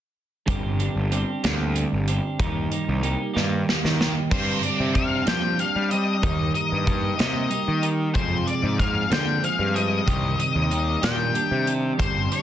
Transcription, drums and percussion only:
0.48 kick loud
0.48 closed hi-hat medium
0.80 closed hi-hat soft
1.12 closed hi-hat medium
1.44 snare medium
1.44 closed hi-hat medium
1.76 closed hi-hat medium
2.08 closed hi-hat medium
2.40 kick loud
2.40 closed hi-hat medium
2.72 closed hi-hat medium
3.03 closed hi-hat medium
3.37 snare soft
3.69 snare medium
3.85 snare medium
4.01 snare medium
4.31 kick loud
4.31 crash medium
4.63 closed hi-hat medium
4.95 kick medium
4.95 closed hi-hat medium
5.27 snare medium
5.27 closed hi-hat medium
5.59 closed hi-hat medium
5.91 closed hi-hat medium
6.23 kick loud
6.23 closed hi-hat medium
6.55 closed hi-hat medium
6.87 kick medium
6.87 closed hi-hat medium
7.19 snare medium
7.19 closed hi-hat medium
7.51 closed hi-hat medium
7.83 closed hi-hat medium
8.15 kick loud
8.15 closed hi-hat medium
8.47 closed hi-hat soft
8.79 kick medium
8.79 closed hi-hat soft
9.12 snare loud
9.12 closed hi-hat medium
9.44 closed hi-hat medium
9.76 closed hi-hat medium
10.08 kick medium
10.08 closed hi-hat medium
10.40 closed hi-hat medium
10.71 closed hi-hat medium
11.03 snare medium
11.03 closed hi-hat medium
11.35 closed hi-hat medium
11.67 closed hi-hat medium
12.00 kick loud
12.00 closed hi-hat medium
12.32 closed hi-hat medium

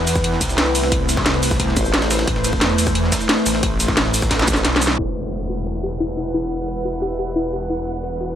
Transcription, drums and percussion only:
0.07 open hi-hat medium
0.07 ride medium
0.07 shaker medium
0.16 kick loud
0.16 snare soft
0.16 shaker soft
0.24 closed hi-hat medium
0.24 ride medium
0.33 snare soft
0.41 kick medium
0.41 closed hi-hat medium
0.41 ride medium
0.41 shaker medium
0.49 snare medium
0.49 shaker soft
0.58 snare loud
0.58 closed hi-hat medium
0.58 ride medium
0.66 snare medium
0.75 open hi-hat medium
0.75 ride medium
0.75 shaker medium
0.83 snare medium
0.92 kick loud
0.92 closed hi-hat medium
0.92 ride medium
1.09 snare medium
1.09 closed hi-hat medium
1.09 ride medium
1.09 shaker medium
1.17 kick loud
1.17 snare soft
1.26 snare loud
1.26 closed hi-hat medium
1.26 ride medium
1.34 snare medium
1.43 open hi-hat medium
1.43 ride medium
1.43 shaker medium
1.51 kick loud
1.51 snare medium
1.51 shaker soft
1.60 kick medium
1.60 closed hi-hat medium
1.60 ride medium
1.68 snare soft
1.77 kick loud
1.77 closed hi-hat medium
1.77 ride medium
1.77 shaker medium
1.85 shaker soft
1.94 snare loud
1.94 closed hi-hat medium
1.94 ride medium
2.02 snare loud
2.02 ride medium
2.11 snare loud
2.11 open hi-hat medium
2.11 ride medium
2.11 shaker medium
2.19 snare loud
2.19 ride medium
2.27 kick loud
2.27 closed hi-hat medium
2.27 ride medium
2.36 snare medium
2.44 snare medium
2.44 closed hi-hat medium
2.44 ride medium
2.44 shaker medium
2.53 kick loud
2.61 snare loud
2.61 closed hi-hat medium
2.61 ride medium
2.70 snare soft
2.78 open hi-hat medium
2.78 ride medium
2.78 shaker medium
2.87 kick loud
2.87 snare soft
2.87 shaker soft
2.95 closed hi-hat medium
2.95 ride medium
3.04 snare soft
3.12 kick medium
3.12 snare loud
3.12 closed hi-hat medium
3.12 ride medium
3.12 shaker medium
3.21 snare medium
3.21 shaker soft
3.29 snare loud
3.29 closed hi-hat medium
3.29 ride medium
3.38 snare medium
3.46 open hi-hat medium
3.46 ride medium
3.46 shaker medium
3.55 snare medium
3.63 kick loud
3.63 closed hi-hat loud
3.63 ride medium
3.80 snare medium
3.80 closed hi-hat medium
3.80 ride medium
3.80 shaker medium
3.88 kick loud
3.88 snare soft
3.97 snare loud
3.97 closed hi-hat loud
3.97 ride medium
4.06 snare medium
4.14 open hi-hat medium
4.14 ride medium
4.14 shaker medium
4.22 kick loud
4.22 snare medium
4.22 shaker soft
4.31 kick medium
4.31 snare medium
4.31 snare loud
4.31 closed hi-hat medium
4.31 ride medium
4.39 snare loud
4.39 ride medium
4.42 snare medium
4.48 kick loud
4.48 closed hi-hat medium
4.48 ride medium
4.48 shaker medium
4.53 snare medium
4.53 shaker soft
4.56 snare soft
4.65 snare medium
4.65 closed hi-hat loud
4.65 ride medium
4.73 snare soft
4.76 snare loud
4.82 open hi-hat medium
4.82 ride medium
4.82 shaker medium
4.87 snare loud
4.90 snare medium
4.99 closed hi-hat medium
4.99 crash medium
5.15 closed hi-hat medium
5.32 closed hi-hat medium
5.49 closed hi-hat medium
5.66 closed hi-hat medium
5.83 closed hi-hat medium
6.00 closed hi-hat medium
6.17 closed hi-hat medium
6.34 closed hi-hat medium
6.51 closed hi-hat medium
6.68 closed hi-hat medium
6.85 closed hi-hat medium
7.02 closed hi-hat medium
7.19 closed hi-hat medium
7.36 closed hi-hat medium
7.53 closed hi-hat medium
7.70 closed hi-hat medium
7.87 closed hi-hat medium
8.04 closed hi-hat medium
8.21 closed hi-hat medium

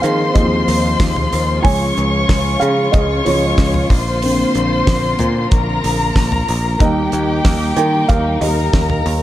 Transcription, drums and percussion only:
0.03 hi-hat pedal medium
0.03 open hi-hat medium
0.35 kick loud
0.35 hi-hat pedal medium
0.35 open hi-hat loud
0.68 hi-hat pedal medium
0.68 open hi-hat medium
1.00 kick loud
1.00 snare loud
1.00 hi-hat pedal medium
1.00 open hi-hat medium
1.16 floor tom medium
1.32 hi-hat pedal medium
1.32 open hi-hat medium
1.65 kick loud
1.65 hi-hat pedal medium
1.65 open hi-hat loud
1.97 hi-hat pedal medium
1.97 open hi-hat medium
2.29 kick loud
2.29 snare loud
2.29 hi-hat pedal medium
2.29 open hi-hat loud
2.61 hi-hat pedal medium
2.61 open hi-hat medium
2.93 kick loud
2.93 hi-hat pedal medium
2.93 open hi-hat medium
3.26 hi-hat pedal medium
3.26 open hi-hat medium
3.58 kick loud
3.58 snare loud
3.58 hi-hat pedal medium
3.58 open hi-hat medium
3.74 floor tom medium
3.90 kick loud
3.90 hi-hat pedal medium
3.90 open hi-hat medium
4.22 hi-hat pedal medium
4.22 open hi-hat loud
4.55 hi-hat pedal medium
4.55 open hi-hat medium
4.87 kick loud
4.87 snare loud
4.87 hi-hat pedal medium
4.87 open hi-hat loud
5.19 floor tom medium
5.19 hi-hat pedal medium
5.19 open hi-hat medium
5.51 kick loud
5.51 hi-hat pedal medium
5.51 open hi-hat medium
5.84 hi-hat pedal medium
5.84 open hi-hat medium
6.16 kick loud
6.16 snare loud
6.16 hi-hat pedal medium
6.16 open hi-hat medium
6.32 floor tom medium
6.48 hi-hat pedal medium
6.48 open hi-hat medium
6.80 kick loud
6.80 hi-hat pedal medium
6.80 open hi-hat loud
7.12 hi-hat pedal medium
7.12 open hi-hat medium
7.45 kick loud
7.45 snare loud
7.45 hi-hat pedal medium
7.45 open hi-hat medium
7.76 hi-hat pedal medium
7.76 open hi-hat medium
8.09 kick loud
8.09 hi-hat pedal medium
8.09 open hi-hat medium
8.41 hi-hat pedal medium
8.41 open hi-hat medium
8.73 kick loud
8.73 snare loud
8.73 hi-hat pedal medium
8.73 open hi-hat medium
8.90 floor tom medium
9.06 hi-hat pedal medium
9.06 open hi-hat medium

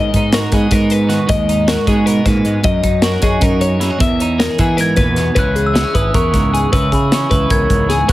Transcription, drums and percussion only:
0.14 kick medium
0.14 closed hi-hat medium
0.32 snare loud
0.32 closed hi-hat medium
0.52 kick medium
0.52 closed hi-hat medium
0.71 kick medium
0.71 closed hi-hat medium
0.90 closed hi-hat medium
1.10 snare soft
1.10 closed hi-hat medium
1.29 kick loud
1.29 closed hi-hat medium
1.49 closed hi-hat medium
1.68 snare loud
1.68 closed hi-hat medium
1.87 kick medium
1.87 closed hi-hat medium
2.07 closed hi-hat medium
2.26 kick medium
2.26 snare soft
2.26 closed hi-hat medium
2.45 closed hi-hat medium
2.64 kick loud
2.64 closed hi-hat medium
2.84 kick medium
2.84 closed hi-hat medium
3.02 snare loud
3.02 closed hi-hat medium
3.22 kick medium
3.22 snare soft
3.22 closed hi-hat medium
3.41 kick loud
3.41 closed hi-hat medium
3.61 closed hi-hat medium
3.81 snare soft
3.81 closed hi-hat medium
4.00 kick loud
4.00 closed hi-hat medium
4.20 closed hi-hat medium
4.40 snare loud
4.40 closed hi-hat medium
4.59 kick medium
4.59 closed hi-hat medium
4.78 snare soft
4.78 closed hi-hat medium
4.96 kick medium
4.96 snare soft
4.96 closed hi-hat medium
5.16 snare soft
5.16 closed hi-hat medium
5.36 kick medium
5.36 closed hi-hat medium
5.56 closed hi-hat medium
5.75 snare medium
5.75 closed hi-hat medium
5.95 kick medium
5.95 closed hi-hat medium
6.14 kick medium
6.14 closed hi-hat medium
6.34 kick medium
6.34 snare soft
6.34 closed hi-hat medium
6.55 closed hi-hat medium
6.73 kick loud
6.73 closed hi-hat medium
6.92 kick medium
6.92 closed hi-hat medium
7.12 snare medium
7.12 closed hi-hat medium
7.31 kick medium
7.31 closed hi-hat medium
7.50 kick medium
7.50 closed hi-hat medium
7.70 kick medium
7.70 closed hi-hat medium
7.90 snare soft
7.90 closed hi-hat medium
8.09 kick medium
8.09 closed hi-hat medium

